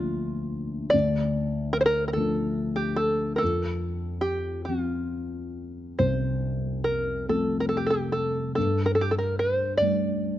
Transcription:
0.00 0.89 D2 soft
0.00 0.90 F3 soft
0.00 0.90 A#3 soft
0.00 0.90 D4 soft
0.00 0.96 F4 medium
0.90 3.38 D2 medium
0.90 1.73 D5 medium
1.73 1.80 A#4 medium
1.81 1.85 C5 medium
1.86 2.07 A#4 medium
2.08 2.13 A#4 medium
2.13 3.37 F3 soft
2.13 3.38 A3 soft
2.13 3.37 D4 soft
2.13 2.79 A4 medium
2.76 2.99 G4 medium
2.96 3.34 A4 medium
3.36 4.21 A4 medium
3.36 3.42 A#4 medium
3.42 5.97 F2 medium
4.21 4.65 G4 medium
4.65 7.25 F3 soft
4.65 7.25 C4 soft
4.65 6.02 F4 medium
5.99 8.52 C2 soft
5.99 6.84 C5 medium
6.84 7.29 A#4 medium
7.29 8.52 F3 soft
7.29 8.52 A3 soft
7.29 8.53 C4 soft
7.29 7.59 A4 medium
7.60 7.68 A#4 medium
7.69 7.77 A4 medium
7.77 7.85 G4 medium
7.86 8.14 G4 medium
7.86 7.94 A4 medium
8.12 8.54 A4 medium
8.55 10.39 G2 soft
8.55 8.84 A4 medium
8.86 8.93 A#4 medium
8.95 9.02 A4 medium
9.01 9.10 G4 medium
9.11 9.18 A4 medium
9.18 9.39 A#4 medium
9.39 9.77 C5 medium
9.77 10.39 G3 soft
9.77 10.39 A3 soft
9.77 10.39 D5 medium
9.82 10.39 D4 soft

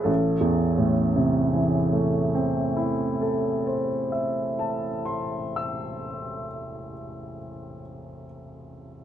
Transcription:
0.00 0.10 G#3 soft
0.00 0.11 E4 soft
0.00 0.11 G#4 soft
0.00 3.20 A4 soft
0.00 0.11 B4 medium
0.05 3.75 A1 soft
0.41 4.10 E2 soft
0.78 4.48 A2 soft
1.16 4.86 C3 soft
1.53 5.23 E3 soft
1.93 5.63 A3 soft
2.35 6.04 C4 soft
2.77 6.46 E4 soft
3.21 6.91 A4 soft
3.67 7.36 C5 soft
4.12 7.82 E5 soft
4.59 8.26 A5 soft
5.05 8.25 C6 soft
5.56 8.26 E6 soft

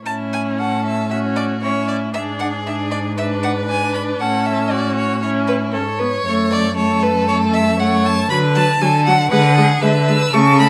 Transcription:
0.05 2.16 A2 medium
0.05 1.06 C#4 medium
0.05 0.61 E4 medium
0.05 0.14 A5 loud
0.33 0.41 G#5 loud
0.59 1.12 A4 medium
0.59 0.84 F#5 medium
0.86 1.10 E5 loud
1.10 1.61 C#4 medium
1.10 1.64 F#4 medium
1.10 1.18 E5 medium
1.36 1.44 D5 loud
1.62 2.13 C#4 medium
1.62 2.13 E4 medium
1.62 1.87 C#5 loud
1.88 1.96 D5 medium
2.14 4.19 G#2 medium
2.14 2.65 D4 medium
2.14 3.16 G#4 medium
2.14 2.22 E5 loud
2.39 2.47 F#5 loud
2.66 3.17 D4 medium
2.66 2.74 E5 medium
2.91 2.99 D5 medium
3.18 3.69 D4 medium
3.18 4.22 B4 medium
3.18 3.26 E5 loud
3.43 3.51 F#5 loud
3.69 4.23 D4 medium
3.69 3.93 G#5 loud
3.94 4.02 B5 loud
4.20 5.75 A2 medium
4.20 5.22 C#4 medium
4.20 4.73 A4 medium
4.20 4.48 F#5 loud
4.46 4.72 E5 loud
4.71 5.24 F#4 medium
4.71 4.95 D5 loud
4.96 5.21 C#5 loud
5.22 5.72 C#4 medium
5.22 5.76 E4 medium
5.22 5.30 C#5 loud
5.47 5.55 B4 loud
5.73 6.24 G#2 medium
5.73 5.81 C#4 medium
5.73 6.00 A4 loud
5.73 6.76 C#5 loud
5.99 6.08 B3 medium
5.99 6.24 B4 loud
6.25 8.26 F#2 medium
6.25 6.75 A3 medium
6.25 6.33 C#5 loud
6.50 6.76 D5 loud
6.76 7.26 A3 medium
6.76 7.77 A4 loud
6.76 7.04 C#5 loud
7.02 7.28 B4 loud
7.28 7.78 A3 loud
7.28 7.36 C#5 loud
7.53 7.81 E5 loud
7.79 8.29 A3 medium
7.79 8.29 C#5 loud
7.79 8.07 F#5 loud
8.06 8.29 A5 loud
8.30 8.75 D3 loud
8.30 8.39 F#3 medium
8.30 8.80 B4 loud
8.30 8.38 B5 loud
8.55 8.64 F#3 medium
8.55 8.83 A5 loud
8.80 9.25 D3 loud
8.80 8.89 F#3 medium
8.80 9.30 A4 loud
8.80 9.05 G#5 loud
9.06 9.15 F#3 medium
9.06 9.31 F#5 loud
9.30 9.76 D3 loud
9.30 9.39 G#3 loud
9.30 9.55 B4 loud
9.30 9.84 F#5 loud
9.56 9.65 G#3 medium
9.56 9.83 G#4 loud
9.81 10.27 D3 loud
9.81 9.90 G#3 medium
9.81 10.35 B4 loud
9.81 10.10 E5 loud
10.08 10.16 G#3 medium
10.08 10.35 E6 loud
10.33 10.69 C#3 loud
10.33 10.41 A3 loud
10.33 10.69 A4 loud
10.33 10.59 C#6 loud
10.59 10.67 A3 medium
10.59 10.67 B5 loud

